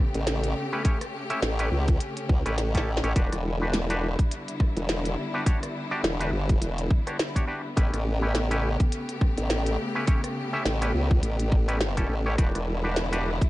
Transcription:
Already playing: C#3 A3 B3 G4
0.14 A1, closed hi-hat
0.27 snare, closed hi-hat
0.44 closed hi-hat
0.72 C#4 E4 G4 B4
0.85 C#4 E4 G4 C#5, kick, closed hi-hat
1.01 cross-stick, closed hi-hat
1.30 C#4 E4 G4 E5, closed hi-hat
1.42 A1, snare, closed hi-hat
1.59 C#4 E4 G4 B4, closed hi-hat
1.72 C#2
1.88 kick, closed hi-hat
2.00 closed hi-hat
2.17 closed hi-hat
2.29 C#2, kick
2.46 A1 C#4 E4 G4 B4, cross-stick, closed hi-hat
2.58 snare, closed hi-hat
2.75 C#4 E4 G4 A4, kick, snare, closed hi-hat
2.97 snare
3.04 A1 C#4 E4 G4 C#5, closed hi-hat
3.16 E1 D3 G3 B3 D4 E4 F#4 G4 B4, kick, closed hi-hat
3.32 E1, cross-stick, closed hi-hat
3.61 D4 F#4 G4 B4
3.73 snare, closed hi-hat
3.90 D4 F#4 G4 B4, closed hi-hat
4.19 kick, closed hi-hat
4.31 closed hi-hat
4.48 closed hi-hat
4.60 kick, cross-stick
4.76 E1, closed hi-hat
4.89 snare, closed hi-hat
5.05 closed hi-hat
5.34 D4 F#4 G4 B4
5.46 D4 F#4 G4 C#5, kick, closed hi-hat
5.63 cross-stick, closed hi-hat
5.91 D4 F#4 G4 D5
6.04 E1, snare, closed hi-hat
6.20 D4 F#4 G4 B4, closed hi-hat
6.32 G1
6.49 kick, closed hi-hat
6.61 E1, closed hi-hat
6.78 closed hi-hat
6.90 kick
7.07 D4 F#4 G4 C#5, cross-stick, closed hi-hat
7.19 snare, closed hi-hat
7.35 D4 F#4 G4 C#5, kick, closed hi-hat
7.47 D4 F#4 G4 B4
7.76 A1 C#3 A3 C#4 E4 G4 B4, kick, closed hi-hat
7.93 A1, cross-stick, closed hi-hat
8.22 C#4 E4 G4 B4
8.35 snare, closed hi-hat
8.51 C#4 E4 G4 B4, closed hi-hat
8.80 kick, closed hi-hat
8.92 closed hi-hat
9.09 closed hi-hat
9.21 kick, cross-stick
9.38 A1, closed hi-hat
9.50 snare, closed hi-hat
9.66 closed hi-hat
9.95 C#4 E4 G4 B4
10.07 C#4 E4 G4 C#5, kick, closed hi-hat
10.24 cross-stick, closed hi-hat
10.53 C#4 E4 G4 E5
10.65 A1, snare, closed hi-hat
10.82 C#4 E4 G4 B4, closed hi-hat
10.94 C#2
11.11 kick
11.23 A1, closed hi-hat
11.40 closed hi-hat
11.52 kick
11.68 C#4 E4 G4 B4, cross-stick, closed hi-hat
11.81 snare, closed hi-hat
11.97 C#4 E4 G4 A4, kick, closed hi-hat
12.09 A1
12.26 C#4 E4 G4 C#5
12.38 E1 D3 G3 D4 E4 F#4 G4 B4, kick, closed hi-hat
12.55 E1, cross-stick, closed hi-hat
12.84 D4 F#4 G4 B4
12.96 snare, closed hi-hat
13.12 D4 F#4 G4 B4, closed hi-hat
13.41 kick, closed hi-hat

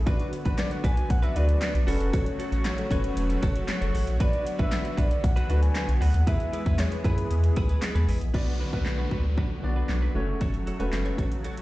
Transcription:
0.06 B1 D3 F#3 B3 D4 F#4 B4, kick, closed hi-hat
0.20 closed hi-hat
0.32 B4, muted clean electric guitar stroke, closed hi-hat
0.45 A1 D4 F#4 B4, kick, closed hi-hat
0.58 D5, muted clean electric guitar stroke, snare, clap, closed hi-hat
0.71 F#5, muted clean electric guitar stroke, closed hi-hat
0.84 B1 D4 F#4 B4 G#5, kick, closed hi-hat
0.97 muted clean electric guitar stroke, closed hi-hat
1.10 B1 F#5, muted clean electric guitar stroke, kick, closed hi-hat
1.22 D4 F#4 B4 E5, closed hi-hat
1.35 D2 D4 F#4 B4 D5, closed hi-hat
1.48 muted clean electric guitar stroke, closed hi-hat
1.61 muted clean electric guitar stroke, snare, clap, closed hi-hat
1.74 B1, muted clean electric guitar stroke, closed hi-hat
1.87 F#1 C#3 A3 C#4 F#4 A4 B4 C#5, open hi-hat
2.00 F1, muted clean electric guitar stroke, closed hi-hat
2.13 F#1 F#4 A4 C#5, kick, closed hi-hat
2.26 muted clean electric guitar stroke, closed hi-hat
2.39 F#4 A4 C#5, closed hi-hat
2.52 A1 F#4 A4 C#5, closed hi-hat
2.65 snare, clap, closed hi-hat
2.78 F#4 A4, muted clean electric guitar stroke, closed hi-hat
2.91 F#1 C#4 F#4 A4 B4 C#5, kick, closed hi-hat
3.04 muted clean electric guitar stroke, closed hi-hat
3.17 E1, muted clean electric guitar stroke, closed hi-hat
3.29 muted clean electric guitar stroke, closed hi-hat
3.42 F#1 F#4 A4 C#5, kick, closed hi-hat
3.55 F#4 A4 C#5, closed hi-hat
3.68 C#5, snare, clap, closed hi-hat
3.81 F#1 F#4 A4 C#5, closed hi-hat
3.94 A1 F#4 A4 C#5, open hi-hat
4.07 A#1, closed hi-hat
4.20 B1 D3 B3 D4 F#4 B4 D5, kick, closed hi-hat
4.33 closed hi-hat
4.46 muted clean electric guitar stroke, closed hi-hat
4.59 A1 D4 F#4 B4 E5, kick, closed hi-hat
4.72 snare, clap, closed hi-hat
4.84 muted clean electric guitar stroke, closed hi-hat
4.91 E5
4.97 B1 D4 F#4 B4 D5, kick, closed hi-hat
5.11 muted clean electric guitar stroke, closed hi-hat
5.23 B1 F#5, muted clean electric guitar stroke, kick, closed hi-hat
5.36 D4 F#4 B4, closed hi-hat
5.49 D2 D4 F#4 B4, closed hi-hat
5.62 G#5, muted clean electric guitar stroke, closed hi-hat
5.75 muted clean electric guitar stroke, snare, clap, closed hi-hat
5.88 B1, muted clean electric guitar stroke, closed hi-hat
6.01 D2 D4 F#4 B4 F#5, open hi-hat
6.14 D#2, muted clean electric guitar stroke, closed hi-hat
6.27 E2 E3 E4 G#4 B4 E5, kick, closed hi-hat
6.40 muted clean electric guitar stroke, closed hi-hat
6.53 E4 G#4 B4, closed hi-hat
6.66 E2 E4 G#4 B4, kick, closed hi-hat
6.79 C#5, snare, clap, closed hi-hat
6.91 G#4 B4, muted clean electric guitar stroke, closed hi-hat
7.04 F#2 E4 G#4 B4, kick, closed hi-hat
7.18 muted clean electric guitar stroke, closed hi-hat
7.30 E2, muted clean electric guitar stroke, closed hi-hat
7.43 muted clean electric guitar stroke, closed hi-hat
7.56 D2 E4 G#4 B4, kick, closed hi-hat
7.69 E4 G#4 B4, closed hi-hat
7.82 muted clean electric guitar stroke, snare, clap, closed hi-hat
7.95 E2 E4 G#4 B4, closed hi-hat
8.08 A1 E4 G#4 B4, open hi-hat
8.21 A#1, muted clean electric guitar stroke, closed hi-hat
8.34 B1 F#3 B3 D4 F#4 B4 D5, kick, crash, downlifter
8.60 D4 F#4 B4
8.73 D2 B3 D4 F#4 B4, kick
8.86 B1, snare, clap
8.98 D4 F#4 B4
9.11 D2 D4 F#4 B4, kick
9.24 muted clean electric guitar stroke
9.37 D4 F#4 B4, kick
9.51 muted clean electric guitar stroke
9.63 B1 B3 D4 F#4 D5, muted clean electric guitar stroke
9.76 D4 F#4 B4
9.89 B1, muted clean electric guitar stroke, snare, clap
10.02 D4 F#4 B4
10.15 F#1 C#3 A3 C#4 F#4 C#5
10.28 muted clean electric guitar stroke
10.41 F#1 F#4 A4 C#5, kick, closed hi-hat
10.54 closed hi-hat
10.67 F#4 A4 C#5, closed hi-hat
10.79 E1 A3 C#4 F#4 A4 B4 C#5, closed hi-hat
10.93 F#1, muted clean electric guitar stroke, snare, clap, closed hi-hat
11.05 F#4 A4 C#5, closed hi-hat
11.18 A1 F#4 A4 C#5, kick, closed hi-hat
11.31 muted clean electric guitar stroke, closed hi-hat
11.44 F#4 A4 C#5, closed hi-hat
11.57 muted clean electric guitar stroke, closed hi-hat

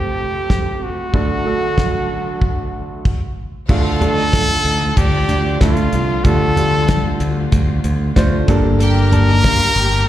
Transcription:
Already playing: F1 F2 C3 A3 C4 F4 G4 A4
0.50 kick, snare
0.83 F#4
1.13 D2 D3 F#3 A3 D4 F#4 A4, kick
1.45 A3 D4 F#4 A4
1.78 kick, snare
2.42 kick
3.05 kick, crash
3.69 D2 D3 F3 A3 D4 F4 A4 F5, kick, crash
4.01 A3 D4 F4 A4, closed hi-hat, floor tom
4.16 D#4 D#5
4.33 F4 F5, kick, snare, closed hi-hat
4.65 D2 D#4 D#5, closed hi-hat
4.97 D2 D4 G4 D5, kick, closed hi-hat
5.29 D2, closed hi-hat, floor tom
5.60 D2 A3 D4 F4 A4, kick, snare, closed hi-hat
5.77 closed hi-hat
5.93 C2, closed hi-hat
6.25 D2 D3 G3 A3 D4 F4 G4 A4, kick, closed hi-hat
6.56 A3 D4 F4 G4, closed hi-hat, floor tom
6.88 kick, snare, closed hi-hat
7.20 D2, closed hi-hat
7.52 D2, kick, closed hi-hat
7.84 D2, closed hi-hat
8.16 D2 A3 D4 F4 C5, kick, snare, closed hi-hat
8.48 G1 G2 G3 A#3 D4 G4 A4, kick, closed hi-hat
8.80 G4 A#4 G5, closed hi-hat
9.12 A#3 D4 G4 A5, closed hi-hat, floor tom
9.28 D#4 D#5
9.44 F4 F5, kick, snare, closed hi-hat
9.76 G1 G4 G5, closed hi-hat
9.92 closed hi-hat

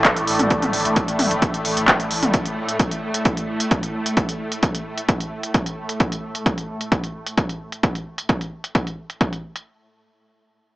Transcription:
Already playing: A2 A3 E4 A4 D5 A5
0.05 kick, clap, closed hi-hat
0.17 closed hi-hat
0.27 A1, open hi-hat
0.39 A1, closed hi-hat, mid tom
0.50 kick, closed hi-hat
0.62 closed hi-hat, mid tom
0.73 A1, open hi-hat
0.85 A1, closed hi-hat
0.96 kick, closed hi-hat
1.08 closed hi-hat
1.19 A1, open hi-hat, mid tom
1.31 A1, closed hi-hat
1.42 kick, closed hi-hat
1.54 closed hi-hat
1.65 A1, open hi-hat
1.77 A1, closed hi-hat
1.88 kick, clap, closed hi-hat
2.00 closed hi-hat
2.11 A1, open hi-hat
2.23 A1, closed hi-hat, mid tom
2.34 kick, closed hi-hat
2.46 closed hi-hat
2.69 closed hi-hat
2.79 kick, closed hi-hat
2.91 closed hi-hat
3.14 closed hi-hat
3.25 kick, closed hi-hat
3.37 closed hi-hat
3.60 closed hi-hat
3.71 kick, closed hi-hat
3.83 closed hi-hat
4.06 closed hi-hat
4.17 kick, closed hi-hat
4.29 closed hi-hat
4.52 closed hi-hat
4.63 kick, closed hi-hat
4.75 closed hi-hat
4.98 closed hi-hat
5.09 kick, closed hi-hat
5.21 closed hi-hat
5.43 closed hi-hat
5.54 kick, closed hi-hat
5.66 closed hi-hat
5.89 closed hi-hat
6.00 kick, closed hi-hat
6.12 closed hi-hat
6.35 closed hi-hat
6.46 kick, closed hi-hat
6.58 closed hi-hat
6.81 closed hi-hat
6.92 kick, closed hi-hat
7.04 closed hi-hat
7.27 closed hi-hat
7.37 kick, closed hi-hat
7.49 closed hi-hat
7.72 closed hi-hat
7.83 kick, closed hi-hat
7.95 closed hi-hat
8.18 closed hi-hat
8.29 kick, closed hi-hat
8.41 closed hi-hat
8.64 closed hi-hat
8.75 kick, closed hi-hat
8.87 closed hi-hat
9.10 closed hi-hat
9.21 kick, closed hi-hat
9.33 closed hi-hat
9.56 closed hi-hat

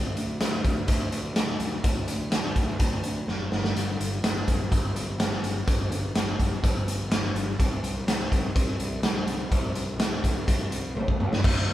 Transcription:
Already playing: D2
0.16 D2, closed hi-hat
0.41 D2, snare, closed hi-hat
0.64 D2, kick, closed hi-hat
0.88 D2, kick, closed hi-hat
1.12 D2, closed hi-hat
1.35 D2, snare, closed hi-hat
1.60 D2, closed hi-hat
1.84 D2, kick, closed hi-hat
2.08 D2, closed hi-hat
2.31 D2, snare, closed hi-hat
2.56 D2, kick, closed hi-hat
2.80 D2, kick, closed hi-hat
3.03 D2, closed hi-hat
3.27 F#1, snare
3.52 G1, snare
3.64 snare
3.76 G1, closed hi-hat
3.99 G1, closed hi-hat
4.23 G1, snare, closed hi-hat
4.48 G1, kick, closed hi-hat
4.72 G1, kick, closed hi-hat
4.94 G1, closed hi-hat
5.19 G1, snare, closed hi-hat
5.42 G1, closed hi-hat
5.67 G1, kick, closed hi-hat
5.90 G1, closed hi-hat
6.14 G1, snare, closed hi-hat
6.40 G1, kick, closed hi-hat
6.63 G1, kick, closed hi-hat
6.86 G1, closed hi-hat
7.10 G1, snare, closed hi-hat
7.34 G1, closed hi-hat
7.59 C2, kick, closed hi-hat
7.83 C2, closed hi-hat
8.07 C2, snare, closed hi-hat
8.32 C2, kick, closed hi-hat
8.55 C2, kick, closed hi-hat
8.80 C2, closed hi-hat
9.03 C2, snare, closed hi-hat
9.26 C2, closed hi-hat
9.51 C2, kick, closed hi-hat
9.74 C2, closed hi-hat
9.98 C2, snare, closed hi-hat
10.24 C2, kick, closed hi-hat
10.48 C2, kick, closed hi-hat
10.71 C2, closed hi-hat
10.95 C2, high tom
11.08 kick
11.20 C#2, mid tom
11.33 snare
11.44 D2, kick, crash
11.67 D2

